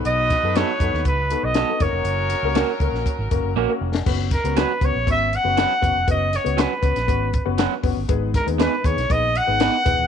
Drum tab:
CC |----------------|----------------|x---------------|----------------|
HH |x-x-x-x-x-x-x-x-|x-x-x-x-x-x-----|--xxx-x-x-x-x-x-|x-xxx-xxx-x-x-o-|
SD |--o-o--o----o---|--o-o--o-------o|--o-o-------o---|--o-o--o----o---|
BD |--o---o-o-----o-|------o-o-o-----|o-o---o-o-----o-|o-----o-o-o---o-|

CC |----------------|
HH |x-xxx-xxx-x-x-x-|
SD |--o-o--o----o---|
BD |o-o---o-o-----o-|